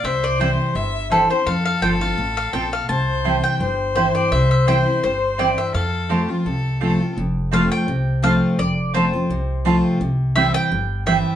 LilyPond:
<<
  \new Staff \with { instrumentName = "Mandolin" } { \time 4/4 \key f \major \tempo 4 = 169 e''8 d''8 c''4. r8 a'8 c''8 | f''8 f''8 g''8 f''4 f''8 g''8 f''8 | a''4. g''4. c''8 d''8 | e''8 e''8 g''4 c''4 d''8 e''8 |
f''2.~ f''8 r8 | r4 f''8 g''4. f''4 | d''4 c''2~ c''8 r8 | r4 e''8 g''4. e''4 | }
  \new Staff \with { instrumentName = "Fiddle" } { \time 4/4 \key f \major c''2 e''4 c''4 | a'1 | c''2 c''2~ | c''1 |
a'4 g'8 f'8 a'4 a'4 | r1 | r1 | r1 | }
  \new Staff \with { instrumentName = "Mandolin" } { \time 4/4 \key f \major r4 <c' e' c'' g''>16 r4. r16 <c' e' c'' g''>16 r8. | r4 <c' f' c'' a''>16 r4. r16 <c' f' c'' a''>16 r8. | r4 <c' e' c'' g''>16 r4. r16 <c' e' c'' g''>16 r8. | r4 <c' e' c'' g''>16 r4. r16 <c' e' c'' g''>16 r8. |
r4 <c' f' c'' a''>16 r4. r16 <c' f' c'' a''>16 r8. | r4 <c' f' c'' a''>16 r4. r16 <c' f' c'' a''>16 r8. | r4 <c' f' c'' a''>16 r4. r16 <c' f' c'' a''>16 r8. | r4 <c' e' c'' g''>16 r4. r16 <c' e' c'' g''>16 r8. | }
  \new Staff \with { instrumentName = "Steel-string acoustic guitar" } { \time 4/4 \key f \major << { r4 <e g c' e'>4 r4 <e g c' e'>8 <c' e'>8 | r4 <f a c' f'>8 <c' f'>8 r2 | r4 <e g c' e'>4 r4 <e g c' e'>4 | r4 <e g c' e'>8 <c' e'>8 r4 <e g c' e'>4 |
r4 <f a c' f'>8 <c' f'>8 r4 <f a c' f'>8 <c' f'>8 | r4 <f a c' f'>4 r4 <f a c' f'>4 | r4 <f a c' f'>8 <c' f'>8 r4 <f a c' f'>4 | r4 <e g c' e'>4 r4 <e g c' e'>4 | } \\ { c2 g,2 | f,2 a,4 bes,4 | c2 g,2 | c2 g,2 |
f,2 c2 | f,2 c2 | f,2 c2 | c2 g,2 | } >> }
  \new Staff \with { instrumentName = "Upright bass" } { \clef bass \time 4/4 \key f \major c,2 g,,2 | f,4 g,,4 a,,4 bes,,4 | c,2 g,,2 | c,2 g,,2 |
f,2 c,2 | f,,2 c,2 | f,,2 c,2 | c,2 g,,2 | }
>>